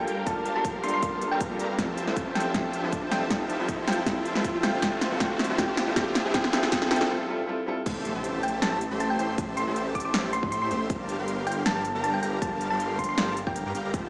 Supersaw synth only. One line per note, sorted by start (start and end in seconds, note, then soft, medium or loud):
0.00 0.24 G3 medium
0.00 0.24 G4 medium
0.00 0.24 A#4 medium
0.00 0.24 F5 medium
0.00 0.24 G5 medium
0.27 0.53 G3 medium
0.27 0.53 G4 medium
0.27 0.53 A#4 medium
0.27 0.53 F5 medium
0.27 0.53 A5 medium
0.56 1.00 G3 medium
0.56 1.00 G4 medium
0.56 1.00 A#4 medium
0.56 1.00 F5 medium
0.56 1.00 C6 medium
1.03 1.19 G3 medium
1.03 1.19 G4 medium
1.03 1.19 A#4 medium
1.03 1.19 F5 medium
1.03 1.19 A5 loud
1.32 1.57 G3 medium
1.32 1.57 G4 medium
1.32 1.57 A#4 medium
1.32 1.57 F5 medium
1.32 1.57 A#5 medium
1.60 1.76 G3 loud
1.60 1.76 G4 medium
1.60 1.76 A#4 medium
1.60 1.76 F5 medium
1.60 1.76 A#5 loud
1.79 2.05 F4 medium
1.79 2.05 C5 medium
1.79 2.05 E5 medium
1.79 2.05 A5 medium
2.07 2.52 F4 medium
2.07 2.52 C5 medium
2.07 2.52 E5 medium
2.07 2.52 G5 medium
2.07 2.52 A5 medium
2.54 2.81 F4 medium
2.54 2.81 C5 medium
2.54 2.81 E5 medium
2.54 2.81 G5 medium
2.83 3.28 F4 medium
2.83 3.28 C5 medium
2.83 3.28 E5 medium
2.83 3.28 G5 medium
2.83 3.28 A5 medium
3.31 3.57 F4 medium
3.31 3.57 C5 medium
3.31 3.57 E5 medium
3.31 3.57 A5 medium
3.59 4.04 F4 medium
3.59 4.04 C5 medium
3.59 4.04 E5 medium
3.59 4.04 G5 medium
3.59 4.04 A5 medium
4.06 4.33 F4 medium
4.06 4.33 E5 medium
4.35 4.80 F4 medium
4.35 4.80 C5 medium
4.35 4.80 E5 medium
4.35 4.80 G5 medium
4.35 4.80 A5 medium
4.82 5.09 F4 medium
4.82 5.09 C5 medium
4.82 5.09 A5 medium
5.11 5.19 F4 medium
5.11 5.19 C5 medium
5.11 5.19 E5 medium
5.11 5.19 G5 medium
5.11 5.19 A5 medium
5.20 5.47 E5 medium
5.49 5.57 F4 medium
5.49 5.57 C5 medium
5.49 5.57 E5 medium
5.49 5.57 G5 medium
5.49 5.57 A5 medium
5.58 5.85 F4 medium
5.58 5.85 C5 medium
5.58 5.85 E5 medium
5.58 5.85 G5 medium
5.58 5.85 A5 medium
5.87 5.95 F4 medium
5.87 5.95 C5 medium
5.87 5.95 E5 medium
5.87 5.95 G5 medium
5.87 5.95 A5 medium
6.25 6.33 F4 medium
6.25 6.33 C5 medium
6.25 6.33 E5 medium
6.25 6.33 G5 medium
6.25 6.33 A5 medium
6.34 6.52 F4 medium
6.34 6.52 C5 medium
6.53 6.71 F4 medium
6.53 6.71 C5 medium
6.53 6.71 E5 medium
6.53 6.71 G5 medium
6.53 6.71 A5 medium
6.72 6.90 F4 medium
6.72 6.90 C5 medium
6.72 6.90 E5 medium
6.72 6.90 G5 medium
6.72 6.90 A5 loud
6.91 7.09 F4 medium
6.91 7.09 C5 medium
6.91 7.09 E5 medium
6.91 7.09 G5 medium
6.91 7.09 A5 medium
7.86 8.13 A3 medium
7.86 8.13 G4 medium
7.86 8.13 C5 medium
7.86 8.13 E5 medium
7.86 8.13 A5 medium
8.15 8.60 A3 medium
8.15 8.60 G4 medium
8.15 8.60 C5 medium
8.15 8.60 E5 medium
8.15 8.60 A5 medium
8.62 8.79 A3 medium
8.62 8.79 G4 medium
8.62 8.79 C5 medium
8.62 8.79 E5 medium
8.62 8.79 A5 loud
8.91 9.17 A3 medium
8.91 9.17 G4 medium
8.91 9.17 C5 medium
8.91 9.17 E5 medium
8.91 9.17 C6 medium
9.19 9.36 A3 loud
9.19 9.36 G4 medium
9.19 9.36 C5 medium
9.19 9.36 E5 medium
9.19 9.36 C6 loud
9.38 9.65 A3 medium
9.38 9.65 A5 medium
9.67 10.12 A3 medium
9.67 10.12 G4 medium
9.67 10.12 C5 medium
9.67 10.12 E5 medium
9.67 10.12 A5 medium
10.14 10.31 A3 medium
10.14 10.31 G4 medium
10.14 10.31 C5 medium
10.14 10.31 E5 medium
10.14 10.31 A5 loud
10.43 10.69 A3 medium
10.43 10.69 G4 medium
10.43 10.69 C5 medium
10.43 10.69 E5 medium
10.43 10.69 C6 medium
10.71 10.88 A3 loud
10.71 10.88 G4 medium
10.71 10.88 C5 medium
10.71 10.88 E5 medium
10.71 10.88 C6 loud
10.90 11.16 G3 medium
10.90 11.16 G4 medium
10.90 11.16 A#4 medium
10.90 11.16 F5 medium
10.90 11.16 A5 medium
11.19 11.64 G3 medium
11.19 11.64 G4 medium
11.19 11.64 A#4 medium
11.19 11.64 F5 medium
11.19 11.64 C6 medium
11.66 11.83 G3 medium
11.66 11.83 G4 medium
11.66 11.83 A#4 medium
11.66 11.83 F5 medium
11.66 11.83 A5 loud
11.95 12.21 G3 medium
11.95 12.21 G4 medium
11.95 12.21 A#4 medium
11.95 12.21 F5 medium
11.95 12.21 A#5 medium
12.23 12.40 G3 loud
12.23 12.40 G4 medium
12.23 12.40 A#4 medium
12.23 12.40 F5 medium
12.23 12.40 A#5 loud
12.42 12.68 G3 medium
12.42 12.68 G4 medium
12.71 13.16 G3 medium
12.71 13.16 G4 medium
12.71 13.16 A#4 medium
12.71 13.16 F5 medium
12.71 13.16 C6 medium
13.18 13.35 G3 loud
13.18 13.35 G4 medium
13.18 13.35 A#4 medium
13.18 13.35 F5 medium
13.18 13.35 A5 loud
13.47 13.63 G3 medium
13.47 13.63 G4 medium
13.47 13.63 A#4 medium
13.47 13.63 F5 medium
13.47 13.63 A#5 loud
13.66 13.73 G3 loud
13.66 13.73 G4 medium
13.66 13.73 A#4 medium
13.66 13.73 F5 medium
13.66 13.73 A#5 loud
13.75 13.82 G3 medium
13.75 13.82 G4 medium
13.75 13.82 A#4 medium
13.75 13.82 F5 medium
13.75 13.82 G5 loud
13.85 13.92 G3 medium
13.85 13.92 G4 medium
13.85 13.92 A#4 medium
13.85 13.92 F5 medium
13.85 13.92 A#5 medium
13.94 14.09 F4 medium
13.94 14.09 C5 medium
13.94 14.09 E5 medium
13.94 14.09 G5 medium
13.94 14.09 A5 loud